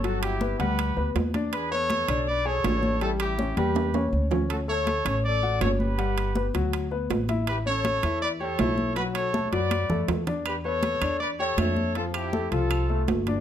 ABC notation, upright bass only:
X:1
M:4/4
L:1/8
Q:1/4=161
K:Edor
V:1 name="Upright bass" clef=bass
G,,,3 D,,2 D,, E,,2- | E,,3 B,,,3 A,,,2- | A,,,3 E,,3 D,,2- | D,,3 A,,,3 G,,,2- |
G,,,3 D,,3 A,,,2- | A,,,3 E,,3 B,,,2- | B,,,3 F,,2 F,, E,,2- | E,,3 E,,3 =F,,2- |
=F,,3 =C,,3 G,,,2 |]